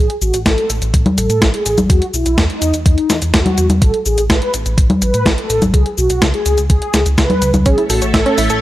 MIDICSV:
0, 0, Header, 1, 6, 480
1, 0, Start_track
1, 0, Tempo, 480000
1, 1899, Time_signature, 4, 2, 24, 8
1, 8613, End_track
2, 0, Start_track
2, 0, Title_t, "String machine"
2, 0, Program_c, 0, 50
2, 7661, Note_on_c, 0, 69, 80
2, 7661, Note_on_c, 0, 76, 93
2, 7662, Note_on_c, 0, 57, 81
2, 7662, Note_on_c, 0, 73, 78
2, 8613, Note_off_c, 0, 57, 0
2, 8613, Note_off_c, 0, 69, 0
2, 8613, Note_off_c, 0, 73, 0
2, 8613, Note_off_c, 0, 76, 0
2, 8613, End_track
3, 0, Start_track
3, 0, Title_t, "Analog polysynth"
3, 0, Program_c, 1, 90
3, 0, Note_on_c, 1, 68, 103
3, 139, Note_off_c, 1, 68, 0
3, 220, Note_on_c, 1, 66, 88
3, 378, Note_off_c, 1, 66, 0
3, 460, Note_on_c, 1, 69, 97
3, 698, Note_off_c, 1, 69, 0
3, 1179, Note_on_c, 1, 69, 98
3, 1417, Note_off_c, 1, 69, 0
3, 1540, Note_on_c, 1, 68, 95
3, 1778, Note_off_c, 1, 68, 0
3, 1898, Note_on_c, 1, 66, 91
3, 2057, Note_off_c, 1, 66, 0
3, 2138, Note_on_c, 1, 64, 96
3, 2377, Note_off_c, 1, 64, 0
3, 2497, Note_on_c, 1, 63, 100
3, 2736, Note_off_c, 1, 63, 0
3, 2859, Note_on_c, 1, 63, 89
3, 3177, Note_off_c, 1, 63, 0
3, 3339, Note_on_c, 1, 66, 92
3, 3657, Note_off_c, 1, 66, 0
3, 3820, Note_on_c, 1, 69, 98
3, 3978, Note_off_c, 1, 69, 0
3, 4060, Note_on_c, 1, 68, 87
3, 4218, Note_off_c, 1, 68, 0
3, 4300, Note_on_c, 1, 71, 98
3, 4538, Note_off_c, 1, 71, 0
3, 5020, Note_on_c, 1, 71, 100
3, 5258, Note_off_c, 1, 71, 0
3, 5380, Note_on_c, 1, 69, 92
3, 5618, Note_off_c, 1, 69, 0
3, 5739, Note_on_c, 1, 68, 92
3, 5898, Note_off_c, 1, 68, 0
3, 5977, Note_on_c, 1, 66, 93
3, 6216, Note_off_c, 1, 66, 0
3, 6339, Note_on_c, 1, 68, 93
3, 6578, Note_off_c, 1, 68, 0
3, 6699, Note_on_c, 1, 68, 91
3, 7017, Note_off_c, 1, 68, 0
3, 7182, Note_on_c, 1, 71, 94
3, 7499, Note_off_c, 1, 71, 0
3, 7658, Note_on_c, 1, 68, 99
3, 7817, Note_off_c, 1, 68, 0
3, 7900, Note_on_c, 1, 66, 89
3, 8058, Note_off_c, 1, 66, 0
3, 8138, Note_on_c, 1, 69, 99
3, 8377, Note_off_c, 1, 69, 0
3, 8613, End_track
4, 0, Start_track
4, 0, Title_t, "Synth arpeggio sound"
4, 0, Program_c, 2, 84
4, 7659, Note_on_c, 2, 61, 99
4, 7734, Note_off_c, 2, 61, 0
4, 7779, Note_on_c, 2, 64, 77
4, 7854, Note_off_c, 2, 64, 0
4, 7899, Note_on_c, 2, 69, 75
4, 7974, Note_off_c, 2, 69, 0
4, 8020, Note_on_c, 2, 73, 73
4, 8094, Note_off_c, 2, 73, 0
4, 8139, Note_on_c, 2, 76, 98
4, 8252, Note_off_c, 2, 76, 0
4, 8260, Note_on_c, 2, 61, 106
4, 8334, Note_off_c, 2, 61, 0
4, 8380, Note_on_c, 2, 64, 96
4, 8454, Note_off_c, 2, 64, 0
4, 8500, Note_on_c, 2, 69, 105
4, 8574, Note_off_c, 2, 69, 0
4, 8613, End_track
5, 0, Start_track
5, 0, Title_t, "Analog synth bass"
5, 0, Program_c, 3, 38
5, 215, Note_on_c, 3, 33, 90
5, 324, Note_off_c, 3, 33, 0
5, 338, Note_on_c, 3, 33, 76
5, 446, Note_off_c, 3, 33, 0
5, 458, Note_on_c, 3, 33, 102
5, 566, Note_off_c, 3, 33, 0
5, 698, Note_on_c, 3, 33, 95
5, 806, Note_off_c, 3, 33, 0
5, 818, Note_on_c, 3, 33, 82
5, 926, Note_off_c, 3, 33, 0
5, 938, Note_on_c, 3, 33, 104
5, 1046, Note_off_c, 3, 33, 0
5, 1179, Note_on_c, 3, 33, 95
5, 1286, Note_off_c, 3, 33, 0
5, 1297, Note_on_c, 3, 45, 79
5, 1405, Note_off_c, 3, 45, 0
5, 1417, Note_on_c, 3, 33, 100
5, 1526, Note_off_c, 3, 33, 0
5, 1656, Note_on_c, 3, 33, 95
5, 1765, Note_off_c, 3, 33, 0
5, 1777, Note_on_c, 3, 33, 80
5, 1885, Note_off_c, 3, 33, 0
5, 1897, Note_on_c, 3, 40, 104
5, 2005, Note_off_c, 3, 40, 0
5, 2136, Note_on_c, 3, 35, 95
5, 2245, Note_off_c, 3, 35, 0
5, 2258, Note_on_c, 3, 35, 79
5, 2366, Note_off_c, 3, 35, 0
5, 2378, Note_on_c, 3, 40, 103
5, 2486, Note_off_c, 3, 40, 0
5, 2616, Note_on_c, 3, 40, 91
5, 2725, Note_off_c, 3, 40, 0
5, 2738, Note_on_c, 3, 40, 82
5, 2846, Note_off_c, 3, 40, 0
5, 2857, Note_on_c, 3, 40, 99
5, 2965, Note_off_c, 3, 40, 0
5, 3100, Note_on_c, 3, 40, 93
5, 3207, Note_off_c, 3, 40, 0
5, 3220, Note_on_c, 3, 40, 86
5, 3327, Note_off_c, 3, 40, 0
5, 3337, Note_on_c, 3, 40, 103
5, 3446, Note_off_c, 3, 40, 0
5, 3579, Note_on_c, 3, 40, 91
5, 3686, Note_off_c, 3, 40, 0
5, 3699, Note_on_c, 3, 40, 81
5, 3806, Note_off_c, 3, 40, 0
5, 3817, Note_on_c, 3, 33, 100
5, 3925, Note_off_c, 3, 33, 0
5, 4058, Note_on_c, 3, 33, 99
5, 4166, Note_off_c, 3, 33, 0
5, 4178, Note_on_c, 3, 33, 77
5, 4286, Note_off_c, 3, 33, 0
5, 4298, Note_on_c, 3, 33, 97
5, 4406, Note_off_c, 3, 33, 0
5, 4538, Note_on_c, 3, 33, 95
5, 4646, Note_off_c, 3, 33, 0
5, 4657, Note_on_c, 3, 33, 86
5, 4766, Note_off_c, 3, 33, 0
5, 4777, Note_on_c, 3, 33, 98
5, 4885, Note_off_c, 3, 33, 0
5, 5019, Note_on_c, 3, 33, 91
5, 5126, Note_off_c, 3, 33, 0
5, 5137, Note_on_c, 3, 45, 79
5, 5245, Note_off_c, 3, 45, 0
5, 5257, Note_on_c, 3, 33, 98
5, 5365, Note_off_c, 3, 33, 0
5, 5496, Note_on_c, 3, 33, 94
5, 5605, Note_off_c, 3, 33, 0
5, 5617, Note_on_c, 3, 33, 79
5, 5725, Note_off_c, 3, 33, 0
5, 5737, Note_on_c, 3, 37, 102
5, 5845, Note_off_c, 3, 37, 0
5, 5978, Note_on_c, 3, 35, 97
5, 6086, Note_off_c, 3, 35, 0
5, 6098, Note_on_c, 3, 35, 80
5, 6206, Note_off_c, 3, 35, 0
5, 6218, Note_on_c, 3, 37, 103
5, 6326, Note_off_c, 3, 37, 0
5, 6458, Note_on_c, 3, 37, 94
5, 6566, Note_off_c, 3, 37, 0
5, 6578, Note_on_c, 3, 37, 81
5, 6686, Note_off_c, 3, 37, 0
5, 6697, Note_on_c, 3, 37, 100
5, 6806, Note_off_c, 3, 37, 0
5, 6937, Note_on_c, 3, 37, 91
5, 7046, Note_off_c, 3, 37, 0
5, 7058, Note_on_c, 3, 37, 82
5, 7166, Note_off_c, 3, 37, 0
5, 7178, Note_on_c, 3, 37, 98
5, 7286, Note_off_c, 3, 37, 0
5, 7418, Note_on_c, 3, 37, 94
5, 7526, Note_off_c, 3, 37, 0
5, 7538, Note_on_c, 3, 37, 78
5, 7646, Note_off_c, 3, 37, 0
5, 7658, Note_on_c, 3, 33, 105
5, 7766, Note_off_c, 3, 33, 0
5, 7897, Note_on_c, 3, 33, 91
5, 8005, Note_off_c, 3, 33, 0
5, 8018, Note_on_c, 3, 33, 76
5, 8126, Note_off_c, 3, 33, 0
5, 8138, Note_on_c, 3, 33, 100
5, 8246, Note_off_c, 3, 33, 0
5, 8378, Note_on_c, 3, 33, 92
5, 8486, Note_off_c, 3, 33, 0
5, 8498, Note_on_c, 3, 33, 86
5, 8606, Note_off_c, 3, 33, 0
5, 8613, End_track
6, 0, Start_track
6, 0, Title_t, "Drums"
6, 99, Note_on_c, 9, 42, 40
6, 199, Note_off_c, 9, 42, 0
6, 218, Note_on_c, 9, 69, 63
6, 318, Note_off_c, 9, 69, 0
6, 338, Note_on_c, 9, 42, 41
6, 338, Note_on_c, 9, 69, 38
6, 438, Note_off_c, 9, 42, 0
6, 438, Note_off_c, 9, 69, 0
6, 458, Note_on_c, 9, 36, 120
6, 459, Note_on_c, 9, 38, 113
6, 459, Note_on_c, 9, 42, 96
6, 459, Note_on_c, 9, 69, 29
6, 558, Note_off_c, 9, 36, 0
6, 559, Note_off_c, 9, 38, 0
6, 559, Note_off_c, 9, 42, 0
6, 559, Note_off_c, 9, 69, 0
6, 579, Note_on_c, 9, 42, 38
6, 679, Note_off_c, 9, 42, 0
6, 699, Note_on_c, 9, 42, 66
6, 699, Note_on_c, 9, 69, 65
6, 799, Note_off_c, 9, 42, 0
6, 799, Note_off_c, 9, 69, 0
6, 818, Note_on_c, 9, 42, 38
6, 818, Note_on_c, 9, 69, 38
6, 918, Note_off_c, 9, 42, 0
6, 918, Note_off_c, 9, 69, 0
6, 938, Note_on_c, 9, 36, 118
6, 939, Note_on_c, 9, 42, 91
6, 939, Note_on_c, 9, 69, 28
6, 1038, Note_off_c, 9, 36, 0
6, 1039, Note_off_c, 9, 42, 0
6, 1039, Note_off_c, 9, 69, 0
6, 1058, Note_on_c, 9, 42, 38
6, 1058, Note_on_c, 9, 63, 73
6, 1158, Note_off_c, 9, 42, 0
6, 1158, Note_off_c, 9, 63, 0
6, 1178, Note_on_c, 9, 42, 67
6, 1178, Note_on_c, 9, 69, 66
6, 1278, Note_off_c, 9, 42, 0
6, 1278, Note_off_c, 9, 69, 0
6, 1298, Note_on_c, 9, 42, 41
6, 1298, Note_on_c, 9, 69, 39
6, 1398, Note_off_c, 9, 42, 0
6, 1398, Note_off_c, 9, 69, 0
6, 1418, Note_on_c, 9, 36, 121
6, 1418, Note_on_c, 9, 38, 115
6, 1418, Note_on_c, 9, 42, 95
6, 1418, Note_on_c, 9, 69, 29
6, 1518, Note_off_c, 9, 36, 0
6, 1518, Note_off_c, 9, 38, 0
6, 1518, Note_off_c, 9, 42, 0
6, 1518, Note_off_c, 9, 69, 0
6, 1538, Note_on_c, 9, 42, 41
6, 1638, Note_off_c, 9, 42, 0
6, 1658, Note_on_c, 9, 42, 64
6, 1658, Note_on_c, 9, 69, 65
6, 1758, Note_off_c, 9, 42, 0
6, 1758, Note_off_c, 9, 69, 0
6, 1778, Note_on_c, 9, 42, 40
6, 1778, Note_on_c, 9, 63, 58
6, 1778, Note_on_c, 9, 69, 38
6, 1878, Note_off_c, 9, 42, 0
6, 1878, Note_off_c, 9, 63, 0
6, 1878, Note_off_c, 9, 69, 0
6, 1898, Note_on_c, 9, 36, 115
6, 1898, Note_on_c, 9, 42, 95
6, 1898, Note_on_c, 9, 69, 27
6, 1998, Note_off_c, 9, 36, 0
6, 1998, Note_off_c, 9, 42, 0
6, 1998, Note_off_c, 9, 69, 0
6, 2018, Note_on_c, 9, 42, 41
6, 2118, Note_off_c, 9, 42, 0
6, 2138, Note_on_c, 9, 69, 66
6, 2238, Note_off_c, 9, 69, 0
6, 2258, Note_on_c, 9, 42, 39
6, 2258, Note_on_c, 9, 69, 38
6, 2358, Note_off_c, 9, 42, 0
6, 2358, Note_off_c, 9, 69, 0
6, 2378, Note_on_c, 9, 36, 121
6, 2378, Note_on_c, 9, 38, 118
6, 2378, Note_on_c, 9, 42, 92
6, 2378, Note_on_c, 9, 69, 27
6, 2478, Note_off_c, 9, 36, 0
6, 2478, Note_off_c, 9, 38, 0
6, 2478, Note_off_c, 9, 42, 0
6, 2478, Note_off_c, 9, 69, 0
6, 2498, Note_on_c, 9, 42, 39
6, 2598, Note_off_c, 9, 42, 0
6, 2618, Note_on_c, 9, 42, 68
6, 2618, Note_on_c, 9, 69, 63
6, 2718, Note_off_c, 9, 42, 0
6, 2718, Note_off_c, 9, 69, 0
6, 2737, Note_on_c, 9, 42, 38
6, 2737, Note_on_c, 9, 69, 35
6, 2837, Note_off_c, 9, 42, 0
6, 2837, Note_off_c, 9, 69, 0
6, 2857, Note_on_c, 9, 36, 123
6, 2857, Note_on_c, 9, 42, 92
6, 2857, Note_on_c, 9, 69, 28
6, 2957, Note_off_c, 9, 36, 0
6, 2957, Note_off_c, 9, 42, 0
6, 2957, Note_off_c, 9, 69, 0
6, 2977, Note_on_c, 9, 42, 39
6, 3077, Note_off_c, 9, 42, 0
6, 3098, Note_on_c, 9, 38, 64
6, 3098, Note_on_c, 9, 42, 66
6, 3098, Note_on_c, 9, 69, 66
6, 3198, Note_off_c, 9, 38, 0
6, 3198, Note_off_c, 9, 42, 0
6, 3198, Note_off_c, 9, 69, 0
6, 3218, Note_on_c, 9, 42, 39
6, 3218, Note_on_c, 9, 69, 37
6, 3318, Note_off_c, 9, 42, 0
6, 3318, Note_off_c, 9, 69, 0
6, 3337, Note_on_c, 9, 38, 119
6, 3337, Note_on_c, 9, 42, 91
6, 3337, Note_on_c, 9, 69, 27
6, 3338, Note_on_c, 9, 36, 120
6, 3437, Note_off_c, 9, 38, 0
6, 3437, Note_off_c, 9, 42, 0
6, 3437, Note_off_c, 9, 69, 0
6, 3438, Note_off_c, 9, 36, 0
6, 3458, Note_on_c, 9, 42, 42
6, 3458, Note_on_c, 9, 63, 76
6, 3558, Note_off_c, 9, 42, 0
6, 3558, Note_off_c, 9, 63, 0
6, 3577, Note_on_c, 9, 42, 69
6, 3577, Note_on_c, 9, 69, 67
6, 3677, Note_off_c, 9, 42, 0
6, 3677, Note_off_c, 9, 69, 0
6, 3698, Note_on_c, 9, 42, 42
6, 3698, Note_on_c, 9, 63, 58
6, 3698, Note_on_c, 9, 69, 36
6, 3798, Note_off_c, 9, 42, 0
6, 3798, Note_off_c, 9, 63, 0
6, 3798, Note_off_c, 9, 69, 0
6, 3818, Note_on_c, 9, 36, 115
6, 3818, Note_on_c, 9, 42, 92
6, 3818, Note_on_c, 9, 69, 28
6, 3918, Note_off_c, 9, 36, 0
6, 3918, Note_off_c, 9, 42, 0
6, 3918, Note_off_c, 9, 69, 0
6, 3938, Note_on_c, 9, 42, 38
6, 4038, Note_off_c, 9, 42, 0
6, 4057, Note_on_c, 9, 69, 64
6, 4157, Note_off_c, 9, 69, 0
6, 4178, Note_on_c, 9, 42, 40
6, 4178, Note_on_c, 9, 69, 35
6, 4278, Note_off_c, 9, 42, 0
6, 4278, Note_off_c, 9, 69, 0
6, 4298, Note_on_c, 9, 36, 127
6, 4298, Note_on_c, 9, 38, 121
6, 4298, Note_on_c, 9, 42, 88
6, 4298, Note_on_c, 9, 69, 27
6, 4398, Note_off_c, 9, 36, 0
6, 4398, Note_off_c, 9, 38, 0
6, 4398, Note_off_c, 9, 42, 0
6, 4398, Note_off_c, 9, 69, 0
6, 4418, Note_on_c, 9, 42, 38
6, 4518, Note_off_c, 9, 42, 0
6, 4538, Note_on_c, 9, 42, 64
6, 4538, Note_on_c, 9, 69, 60
6, 4638, Note_off_c, 9, 42, 0
6, 4638, Note_off_c, 9, 69, 0
6, 4658, Note_on_c, 9, 42, 37
6, 4658, Note_on_c, 9, 69, 37
6, 4758, Note_off_c, 9, 42, 0
6, 4758, Note_off_c, 9, 69, 0
6, 4777, Note_on_c, 9, 36, 123
6, 4778, Note_on_c, 9, 42, 93
6, 4778, Note_on_c, 9, 69, 27
6, 4877, Note_off_c, 9, 36, 0
6, 4878, Note_off_c, 9, 42, 0
6, 4878, Note_off_c, 9, 69, 0
6, 4899, Note_on_c, 9, 42, 38
6, 4899, Note_on_c, 9, 63, 74
6, 4999, Note_off_c, 9, 42, 0
6, 4999, Note_off_c, 9, 63, 0
6, 5019, Note_on_c, 9, 42, 64
6, 5019, Note_on_c, 9, 69, 64
6, 5119, Note_off_c, 9, 42, 0
6, 5119, Note_off_c, 9, 69, 0
6, 5139, Note_on_c, 9, 42, 40
6, 5139, Note_on_c, 9, 69, 38
6, 5239, Note_off_c, 9, 42, 0
6, 5239, Note_off_c, 9, 69, 0
6, 5257, Note_on_c, 9, 36, 120
6, 5260, Note_on_c, 9, 38, 122
6, 5260, Note_on_c, 9, 42, 95
6, 5260, Note_on_c, 9, 69, 28
6, 5357, Note_off_c, 9, 36, 0
6, 5360, Note_off_c, 9, 38, 0
6, 5360, Note_off_c, 9, 42, 0
6, 5360, Note_off_c, 9, 69, 0
6, 5380, Note_on_c, 9, 42, 40
6, 5480, Note_off_c, 9, 42, 0
6, 5499, Note_on_c, 9, 42, 65
6, 5499, Note_on_c, 9, 69, 64
6, 5599, Note_off_c, 9, 42, 0
6, 5599, Note_off_c, 9, 69, 0
6, 5620, Note_on_c, 9, 42, 41
6, 5620, Note_on_c, 9, 63, 62
6, 5620, Note_on_c, 9, 69, 36
6, 5720, Note_off_c, 9, 42, 0
6, 5720, Note_off_c, 9, 63, 0
6, 5720, Note_off_c, 9, 69, 0
6, 5738, Note_on_c, 9, 36, 115
6, 5739, Note_on_c, 9, 42, 84
6, 5739, Note_on_c, 9, 69, 29
6, 5838, Note_off_c, 9, 36, 0
6, 5839, Note_off_c, 9, 42, 0
6, 5839, Note_off_c, 9, 69, 0
6, 5858, Note_on_c, 9, 42, 38
6, 5958, Note_off_c, 9, 42, 0
6, 5978, Note_on_c, 9, 69, 63
6, 6078, Note_off_c, 9, 69, 0
6, 6099, Note_on_c, 9, 42, 40
6, 6099, Note_on_c, 9, 69, 37
6, 6199, Note_off_c, 9, 42, 0
6, 6199, Note_off_c, 9, 69, 0
6, 6218, Note_on_c, 9, 36, 127
6, 6218, Note_on_c, 9, 38, 125
6, 6218, Note_on_c, 9, 42, 91
6, 6218, Note_on_c, 9, 69, 28
6, 6318, Note_off_c, 9, 36, 0
6, 6318, Note_off_c, 9, 38, 0
6, 6318, Note_off_c, 9, 42, 0
6, 6318, Note_off_c, 9, 69, 0
6, 6338, Note_on_c, 9, 42, 38
6, 6438, Note_off_c, 9, 42, 0
6, 6458, Note_on_c, 9, 42, 59
6, 6458, Note_on_c, 9, 69, 62
6, 6558, Note_off_c, 9, 42, 0
6, 6558, Note_off_c, 9, 69, 0
6, 6577, Note_on_c, 9, 42, 38
6, 6577, Note_on_c, 9, 69, 36
6, 6677, Note_off_c, 9, 42, 0
6, 6677, Note_off_c, 9, 69, 0
6, 6698, Note_on_c, 9, 36, 123
6, 6698, Note_on_c, 9, 42, 86
6, 6698, Note_on_c, 9, 69, 28
6, 6798, Note_off_c, 9, 36, 0
6, 6798, Note_off_c, 9, 42, 0
6, 6798, Note_off_c, 9, 69, 0
6, 6818, Note_on_c, 9, 42, 37
6, 6918, Note_off_c, 9, 42, 0
6, 6938, Note_on_c, 9, 38, 64
6, 6938, Note_on_c, 9, 42, 64
6, 6938, Note_on_c, 9, 69, 64
6, 7038, Note_off_c, 9, 38, 0
6, 7038, Note_off_c, 9, 42, 0
6, 7038, Note_off_c, 9, 69, 0
6, 7059, Note_on_c, 9, 42, 39
6, 7059, Note_on_c, 9, 69, 37
6, 7159, Note_off_c, 9, 42, 0
6, 7159, Note_off_c, 9, 69, 0
6, 7178, Note_on_c, 9, 36, 122
6, 7180, Note_on_c, 9, 38, 117
6, 7180, Note_on_c, 9, 42, 91
6, 7180, Note_on_c, 9, 69, 28
6, 7278, Note_off_c, 9, 36, 0
6, 7280, Note_off_c, 9, 38, 0
6, 7280, Note_off_c, 9, 42, 0
6, 7280, Note_off_c, 9, 69, 0
6, 7299, Note_on_c, 9, 42, 39
6, 7299, Note_on_c, 9, 63, 76
6, 7399, Note_off_c, 9, 42, 0
6, 7399, Note_off_c, 9, 63, 0
6, 7418, Note_on_c, 9, 42, 65
6, 7418, Note_on_c, 9, 69, 63
6, 7518, Note_off_c, 9, 42, 0
6, 7518, Note_off_c, 9, 69, 0
6, 7539, Note_on_c, 9, 42, 38
6, 7539, Note_on_c, 9, 63, 62
6, 7539, Note_on_c, 9, 69, 36
6, 7639, Note_off_c, 9, 42, 0
6, 7639, Note_off_c, 9, 63, 0
6, 7639, Note_off_c, 9, 69, 0
6, 7658, Note_on_c, 9, 42, 84
6, 7658, Note_on_c, 9, 69, 29
6, 7659, Note_on_c, 9, 36, 113
6, 7758, Note_off_c, 9, 42, 0
6, 7758, Note_off_c, 9, 69, 0
6, 7759, Note_off_c, 9, 36, 0
6, 7778, Note_on_c, 9, 42, 37
6, 7878, Note_off_c, 9, 42, 0
6, 7898, Note_on_c, 9, 46, 97
6, 7898, Note_on_c, 9, 69, 66
6, 7998, Note_off_c, 9, 46, 0
6, 7998, Note_off_c, 9, 69, 0
6, 8019, Note_on_c, 9, 42, 39
6, 8019, Note_on_c, 9, 69, 39
6, 8119, Note_off_c, 9, 42, 0
6, 8119, Note_off_c, 9, 69, 0
6, 8138, Note_on_c, 9, 36, 121
6, 8139, Note_on_c, 9, 38, 114
6, 8139, Note_on_c, 9, 42, 88
6, 8139, Note_on_c, 9, 69, 28
6, 8238, Note_off_c, 9, 36, 0
6, 8239, Note_off_c, 9, 38, 0
6, 8239, Note_off_c, 9, 42, 0
6, 8239, Note_off_c, 9, 69, 0
6, 8260, Note_on_c, 9, 42, 36
6, 8360, Note_off_c, 9, 42, 0
6, 8379, Note_on_c, 9, 46, 83
6, 8379, Note_on_c, 9, 69, 65
6, 8479, Note_off_c, 9, 46, 0
6, 8479, Note_off_c, 9, 69, 0
6, 8498, Note_on_c, 9, 42, 36
6, 8498, Note_on_c, 9, 69, 39
6, 8598, Note_off_c, 9, 42, 0
6, 8598, Note_off_c, 9, 69, 0
6, 8613, End_track
0, 0, End_of_file